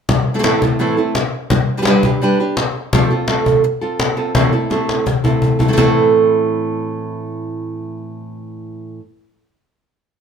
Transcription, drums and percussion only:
0.09 cajon bass
0.44 cajon slap
0.62 cajon bass
1.15 cajon slap
1.50 cajon bass
1.85 cajon slap
2.03 cajon bass
2.57 cajon slap
2.75 cajon slap
2.93 cajon bass
3.11 cajon slap
3.28 cajon slap
3.46 cajon bass
4.00 cajon slap
4.35 cajon bass
4.53 cajon slap
4.71 cajon slap
4.89 cajon slap
5.07 cajon bass
5.25 cajon bass
5.42 cajon bass
5.60 cajon bass
5.78 cajon bass

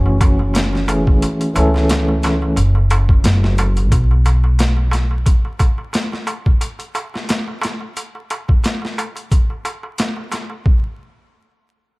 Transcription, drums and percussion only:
0.06 darbuka tek
0.21 kick, closed hi-hat, darbuka tek
0.39 darbuka tek
0.54 snare, closed hi-hat, darbuka tek
0.73 snare, darbuka tek
0.88 closed hi-hat, darbuka tek
1.07 kick, darbuka tek
1.22 closed hi-hat, darbuka tek
1.41 closed hi-hat, darbuka tek
1.56 closed hi-hat, darbuka tek
1.74 snare, darbuka tek
1.89 snare, closed hi-hat, darbuka tek
2.08 darbuka tek
2.23 snare, closed hi-hat, darbuka tek
2.42 darbuka tek
2.56 closed hi-hat, darbuka tek
2.75 darbuka tek
2.90 closed hi-hat, darbuka tek
3.09 kick, darbuka tek
3.24 snare, closed hi-hat, darbuka tek
3.43 snare, darbuka tek
3.58 closed hi-hat, darbuka tek
3.77 closed hi-hat, darbuka tek
3.92 kick, closed hi-hat, darbuka tek
4.11 darbuka tek
4.26 closed hi-hat, darbuka tek
4.44 darbuka tek
4.59 snare, closed hi-hat, darbuka tek
4.77 darbuka tek
4.91 snare, closed hi-hat, darbuka tek
5.11 darbuka tek
5.26 kick, closed hi-hat, darbuka tek
5.45 darbuka tek
5.59 kick, closed hi-hat, darbuka tek
5.78 darbuka tek
5.93 snare, closed hi-hat, darbuka tek
6.12 snare, darbuka tek
6.27 closed hi-hat, darbuka tek
6.46 kick, darbuka tek
6.61 closed hi-hat, darbuka tek
6.79 closed hi-hat, darbuka tek
6.95 closed hi-hat, darbuka tek
7.14 snare, darbuka tek
7.29 snare, closed hi-hat, darbuka tek
7.48 darbuka tek
7.61 snare, closed hi-hat, darbuka tek
7.80 darbuka tek
7.97 closed hi-hat, darbuka tek
8.15 darbuka tek
8.30 closed hi-hat, darbuka tek
8.48 kick, darbuka tek
8.64 snare, closed hi-hat, darbuka tek
8.82 snare, darbuka tek
8.98 closed hi-hat, darbuka tek
9.16 closed hi-hat, darbuka tek
9.31 kick, closed hi-hat, darbuka tek
9.50 darbuka tek
9.65 closed hi-hat, darbuka tek
9.83 darbuka tek
9.98 snare, closed hi-hat, darbuka tek
10.16 darbuka tek
10.32 snare, closed hi-hat, darbuka tek
10.50 darbuka tek
10.66 kick

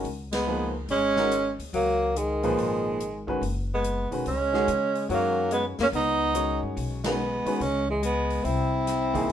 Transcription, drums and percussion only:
0.05 open hi-hat
0.33 snare, ride
0.89 open hi-hat
1.17 snare
1.31 closed hi-hat
1.60 open hi-hat
1.74 open hi-hat
2.16 closed hi-hat
2.43 open hi-hat
2.59 open hi-hat
3.01 closed hi-hat
3.28 kick
3.43 open hi-hat
3.84 closed hi-hat
4.12 open hi-hat
4.26 open hi-hat
4.54 snare
4.68 closed hi-hat
4.95 open hi-hat
5.10 open hi-hat
5.51 closed hi-hat
5.79 snare, open hi-hat
5.93 open hi-hat
6.35 closed hi-hat
6.77 open hi-hat
7.04 snare, ride
7.46 open hi-hat
7.61 open hi-hat
8.03 closed hi-hat
8.30 open hi-hat
8.45 open hi-hat
8.87 snare, closed hi-hat
9.15 kick, open hi-hat

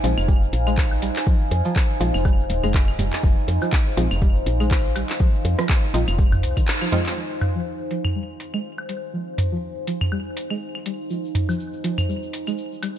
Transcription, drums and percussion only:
0.04 open hi-hat
0.18 claves, shaker
0.28 kick, shaker
0.43 shaker
0.53 open hi-hat
0.67 claves, shaker
0.77 kick, clap, shaker
0.91 high woodblock, shaker
1.02 open hi-hat
1.16 clap, shaker
1.27 kick, shaker
1.41 shaker
1.51 open hi-hat
1.65 shaker
1.76 kick, clap, shaker
1.90 shaker
2.01 open hi-hat
2.14 claves, shaker
2.25 kick, high woodblock, shaker
2.40 shaker
2.50 open hi-hat
2.63 claves, shaker
2.74 kick, clap, shaker
2.88 claves, shaker
2.99 mid tom, open hi-hat
3.13 clap, shaker
3.23 kick, shaker
3.37 shaker
3.48 open hi-hat
3.62 high woodblock, shaker
3.73 kick, clap, shaker
3.87 shaker
3.97 open hi-hat
4.11 claves, shaker
4.22 kick, shaker
4.35 shaker
4.46 open hi-hat
4.60 claves, shaker
4.71 kick, clap, shaker
4.85 shaker
4.96 open hi-hat, high woodblock
5.09 clap, shaker
5.20 kick, shaker
5.34 shaker
5.45 open hi-hat
5.59 cross-stick, shaker
5.69 kick, clap, shaker
5.83 shaker
5.94 open hi-hat
6.08 open hi-hat, claves, shaker
6.19 kick, shaker
6.32 mid tom, high woodblock, shaker
6.43 open hi-hat
6.57 kick, open hi-hat, claves, shaker
6.68 clap, shaker
6.82 claves, shaker
6.92 mid tom, open hi-hat
7.06 clap, shaker
7.41 mid tom, open hi-hat, high woodblock
7.91 open hi-hat
8.05 mid tom, claves
8.40 open hi-hat
8.54 claves
8.78 high woodblock
8.89 open hi-hat
9.38 mid tom, open hi-hat
9.87 open hi-hat
10.01 mid tom, claves
10.12 high woodblock
10.37 open hi-hat
10.50 claves
10.75 claves
10.86 open hi-hat
11.10 shaker
11.25 shaker
11.35 mid tom, open hi-hat
11.49 high woodblock, shaker
11.59 shaker
11.73 shaker
11.84 open hi-hat
11.98 mid tom, claves, shaker
12.09 shaker
12.22 shaker
12.33 open hi-hat
12.47 claves, shaker
12.58 shaker
12.72 shaker
12.83 open hi-hat, high woodblock

